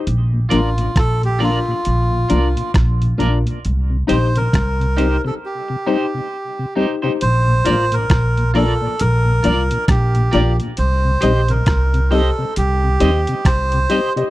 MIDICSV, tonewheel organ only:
0, 0, Header, 1, 2, 480
1, 0, Start_track
1, 0, Key_signature, -2, "major"
1, 0, Tempo, 892857
1, 32, Time_signature, 4, 2, 24, 8
1, 7688, End_track
2, 0, Start_track
2, 0, Title_t, "Tonewheel organ"
2, 0, Program_c, 0, 16
2, 179, Note_on_c, 0, 46, 65
2, 213, Note_off_c, 0, 46, 0
2, 274, Note_on_c, 0, 53, 77
2, 276, Note_on_c, 0, 58, 75
2, 278, Note_on_c, 0, 62, 89
2, 326, Note_off_c, 0, 53, 0
2, 328, Note_off_c, 0, 58, 0
2, 328, Note_off_c, 0, 62, 0
2, 417, Note_on_c, 0, 46, 59
2, 452, Note_off_c, 0, 46, 0
2, 659, Note_on_c, 0, 46, 57
2, 694, Note_off_c, 0, 46, 0
2, 757, Note_on_c, 0, 53, 78
2, 759, Note_on_c, 0, 62, 85
2, 761, Note_on_c, 0, 58, 68
2, 808, Note_off_c, 0, 53, 0
2, 809, Note_off_c, 0, 62, 0
2, 810, Note_off_c, 0, 58, 0
2, 905, Note_on_c, 0, 46, 54
2, 937, Note_off_c, 0, 46, 0
2, 1137, Note_on_c, 0, 46, 54
2, 1173, Note_off_c, 0, 46, 0
2, 1236, Note_on_c, 0, 58, 73
2, 1237, Note_on_c, 0, 53, 71
2, 1239, Note_on_c, 0, 62, 83
2, 1289, Note_off_c, 0, 53, 0
2, 1289, Note_off_c, 0, 58, 0
2, 1290, Note_off_c, 0, 62, 0
2, 1376, Note_on_c, 0, 46, 56
2, 1413, Note_off_c, 0, 46, 0
2, 1622, Note_on_c, 0, 46, 51
2, 1656, Note_off_c, 0, 46, 0
2, 1708, Note_on_c, 0, 58, 61
2, 1710, Note_on_c, 0, 53, 69
2, 1714, Note_on_c, 0, 62, 86
2, 1765, Note_off_c, 0, 58, 0
2, 1766, Note_off_c, 0, 53, 0
2, 1768, Note_off_c, 0, 62, 0
2, 1860, Note_on_c, 0, 46, 53
2, 1895, Note_off_c, 0, 46, 0
2, 2097, Note_on_c, 0, 48, 60
2, 2134, Note_off_c, 0, 48, 0
2, 2194, Note_on_c, 0, 55, 72
2, 2196, Note_on_c, 0, 63, 77
2, 2198, Note_on_c, 0, 60, 64
2, 2248, Note_off_c, 0, 55, 0
2, 2249, Note_off_c, 0, 63, 0
2, 2250, Note_off_c, 0, 60, 0
2, 2343, Note_on_c, 0, 48, 62
2, 2377, Note_off_c, 0, 48, 0
2, 2579, Note_on_c, 0, 48, 53
2, 2615, Note_off_c, 0, 48, 0
2, 2676, Note_on_c, 0, 60, 71
2, 2677, Note_on_c, 0, 55, 76
2, 2681, Note_on_c, 0, 63, 78
2, 2729, Note_off_c, 0, 60, 0
2, 2730, Note_off_c, 0, 55, 0
2, 2732, Note_off_c, 0, 63, 0
2, 2820, Note_on_c, 0, 48, 58
2, 2856, Note_off_c, 0, 48, 0
2, 3063, Note_on_c, 0, 48, 55
2, 3097, Note_off_c, 0, 48, 0
2, 3155, Note_on_c, 0, 55, 76
2, 3157, Note_on_c, 0, 60, 75
2, 3160, Note_on_c, 0, 63, 82
2, 3209, Note_off_c, 0, 55, 0
2, 3210, Note_off_c, 0, 60, 0
2, 3211, Note_off_c, 0, 63, 0
2, 3303, Note_on_c, 0, 48, 50
2, 3337, Note_off_c, 0, 48, 0
2, 3544, Note_on_c, 0, 48, 55
2, 3578, Note_off_c, 0, 48, 0
2, 3636, Note_on_c, 0, 55, 70
2, 3640, Note_on_c, 0, 63, 81
2, 3642, Note_on_c, 0, 60, 60
2, 3689, Note_off_c, 0, 55, 0
2, 3692, Note_off_c, 0, 60, 0
2, 3692, Note_off_c, 0, 63, 0
2, 3783, Note_on_c, 0, 48, 59
2, 3817, Note_off_c, 0, 48, 0
2, 4019, Note_on_c, 0, 46, 67
2, 4055, Note_off_c, 0, 46, 0
2, 4117, Note_on_c, 0, 53, 81
2, 4121, Note_on_c, 0, 58, 77
2, 4122, Note_on_c, 0, 62, 93
2, 4170, Note_off_c, 0, 53, 0
2, 4172, Note_off_c, 0, 58, 0
2, 4172, Note_off_c, 0, 62, 0
2, 4257, Note_on_c, 0, 46, 58
2, 4294, Note_off_c, 0, 46, 0
2, 4506, Note_on_c, 0, 46, 60
2, 4538, Note_off_c, 0, 46, 0
2, 4594, Note_on_c, 0, 53, 82
2, 4599, Note_on_c, 0, 58, 77
2, 4600, Note_on_c, 0, 62, 95
2, 4648, Note_off_c, 0, 53, 0
2, 4651, Note_off_c, 0, 58, 0
2, 4651, Note_off_c, 0, 62, 0
2, 4739, Note_on_c, 0, 46, 66
2, 4775, Note_off_c, 0, 46, 0
2, 4976, Note_on_c, 0, 46, 63
2, 5013, Note_off_c, 0, 46, 0
2, 5071, Note_on_c, 0, 53, 78
2, 5074, Note_on_c, 0, 58, 74
2, 5075, Note_on_c, 0, 62, 83
2, 5126, Note_off_c, 0, 53, 0
2, 5128, Note_off_c, 0, 58, 0
2, 5129, Note_off_c, 0, 62, 0
2, 5223, Note_on_c, 0, 46, 62
2, 5257, Note_off_c, 0, 46, 0
2, 5460, Note_on_c, 0, 46, 59
2, 5495, Note_off_c, 0, 46, 0
2, 5551, Note_on_c, 0, 53, 72
2, 5552, Note_on_c, 0, 58, 74
2, 5554, Note_on_c, 0, 62, 85
2, 5606, Note_off_c, 0, 53, 0
2, 5607, Note_off_c, 0, 58, 0
2, 5608, Note_off_c, 0, 62, 0
2, 5702, Note_on_c, 0, 46, 60
2, 5736, Note_off_c, 0, 46, 0
2, 5937, Note_on_c, 0, 48, 70
2, 5973, Note_off_c, 0, 48, 0
2, 6037, Note_on_c, 0, 55, 82
2, 6038, Note_on_c, 0, 60, 78
2, 6038, Note_on_c, 0, 63, 88
2, 6089, Note_off_c, 0, 55, 0
2, 6089, Note_off_c, 0, 60, 0
2, 6090, Note_off_c, 0, 63, 0
2, 6179, Note_on_c, 0, 48, 61
2, 6214, Note_off_c, 0, 48, 0
2, 6417, Note_on_c, 0, 48, 58
2, 6453, Note_off_c, 0, 48, 0
2, 6513, Note_on_c, 0, 55, 80
2, 6513, Note_on_c, 0, 60, 73
2, 6515, Note_on_c, 0, 63, 81
2, 6567, Note_off_c, 0, 55, 0
2, 6567, Note_off_c, 0, 60, 0
2, 6568, Note_off_c, 0, 63, 0
2, 6658, Note_on_c, 0, 48, 64
2, 6693, Note_off_c, 0, 48, 0
2, 6900, Note_on_c, 0, 48, 64
2, 6934, Note_off_c, 0, 48, 0
2, 6990, Note_on_c, 0, 55, 88
2, 6994, Note_on_c, 0, 63, 98
2, 6996, Note_on_c, 0, 60, 73
2, 7045, Note_off_c, 0, 55, 0
2, 7047, Note_off_c, 0, 63, 0
2, 7048, Note_off_c, 0, 60, 0
2, 7142, Note_on_c, 0, 48, 57
2, 7175, Note_off_c, 0, 48, 0
2, 7384, Note_on_c, 0, 48, 62
2, 7416, Note_off_c, 0, 48, 0
2, 7475, Note_on_c, 0, 55, 75
2, 7477, Note_on_c, 0, 60, 68
2, 7481, Note_on_c, 0, 63, 83
2, 7527, Note_off_c, 0, 55, 0
2, 7528, Note_off_c, 0, 60, 0
2, 7530, Note_off_c, 0, 63, 0
2, 7614, Note_on_c, 0, 48, 59
2, 7651, Note_off_c, 0, 48, 0
2, 7688, End_track
0, 0, End_of_file